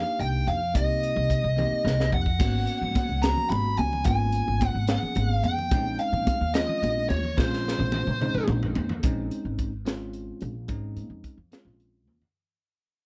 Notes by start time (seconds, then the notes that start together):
Already playing: A#3 D4 D#4 G4 F5
0.19 C2 G5, closed hi-hat
0.47 F2 F5, closed hi-hat
0.74 C2 A#3 C4 D#4 G4 D#5, kick, closed hi-hat
1.03 closed hi-hat
1.16 C2
1.30 kick, closed hi-hat
1.44 C2
1.56 A#3 C4 D#4 G4, high tom
1.71 muted upright bass stroke
1.85 C2, snare
2.00 snare
2.12 F2 F#5, kick
2.26 kick
2.39 G#1 A#3 B3 C#4 F#4, kick, closed hi-hat, crash, muted conga
2.55 low conga
2.67 closed hi-hat
2.81 G#2, low conga
2.95 muted upright bass stroke, kick, closed hi-hat, muted conga, high conga
3.09 C#2, low conga
3.22 A#3 B3 C#4 F#4 A#5, snare, closed hi-hat
3.37 low conga
3.50 G#1 B5, closed hi-hat, muted conga
3.77 C#2 G#5, closed hi-hat, high conga
3.93 low conga
4.04 G#1 A#3 B3 C#4 F4 G#5, kick, closed hi-hat, muted conga
4.21 low conga
4.32 closed hi-hat
4.48 G#1, low conga
4.61 kick, closed hi-hat, muted conga, high conga
4.68 F#5
4.75 G#1, low conga
4.87 A#3 B3 C#4 G#4 F#5, snare, closed hi-hat, low conga
5.03 muted upright bass stroke, low conga
5.15 G#1, closed hi-hat, muted conga
5.31 F5
5.43 F2 G5, closed hi-hat, high conga
5.59 low conga
5.71 A#1 G#3 C4 C#4 D#4, kick, closed hi-hat, muted conga
5.86 low conga
5.99 F5, closed hi-hat
6.13 A#2, low conga
6.27 muted upright bass stroke, kick, closed hi-hat, muted conga, high conga
6.41 D#2, low conga
6.54 G#3 C4 C#4 F4 D#5, snare, closed hi-hat, low conga
6.69 low conga
6.82 A#1, closed hi-hat, muted conga
7.09 D#2 C#5, closed hi-hat, high conga
7.24 low conga
7.38 A#1 G#3 C4 C#4 F4 C5, kick, snare, muted conga
7.53 snare
7.65 snare, low conga
7.79 A#1, high tom, low conga
7.92 high tom, muted conga
8.07 A#1, mid tom
8.21 G#3 C4 C#4 D#4, mid tom
8.34 muted upright bass stroke, mid tom, low conga
8.48 A#1, mid tom, muted conga
8.63 floor tom
8.75 D#2, floor tom, high conga, low conga
8.89 floor tom, low conga
9.03 A#1 G#3 C4 C#4 D#4, kick, closed hi-hat
9.31 closed hi-hat
9.45 G#1
9.59 kick, closed hi-hat
9.85 G#3 C4 C#4 F4, snare, closed hi-hat
10.13 closed hi-hat
10.41 A#1, closed hi-hat
10.68 G#1 G#3 C4 C#4 D#4, kick, closed hi-hat
10.96 A#2, closed hi-hat
11.10 F2
11.24 kick, closed hi-hat
11.37 F2
11.52 G#3 C4 C#4 F4, snare, closed hi-hat
11.65 A#1
11.80 closed hi-hat
12.07 D#2, high tom
12.21 muted upright bass stroke, floor tom